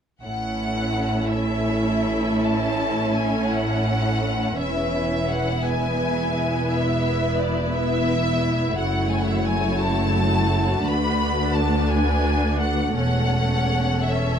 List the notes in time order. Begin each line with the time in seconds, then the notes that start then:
0.23 A1 A2 C#4 E4 A4 E5 F#5
1.31 E5
2.43 A5
3.16 G#5
3.52 F#5
4.60 E1 E2 E4 B4 E5
5.29 F#5
5.64 B3 G#5
6.70 E5
7.39 D5
7.73 E5
8.75 F#1 F#2 A3 F#4 C#5 F#5
9.10 G#5
9.19 F#5
9.29 E5
9.37 F#5
9.47 G#5
9.80 A5
10.83 D2 D4 B4 B5
11.53 A5
11.89 G#5
12.60 F#5
12.96 E1 E2 C#4 A4 C#5 F#5
14.05 C#4 E5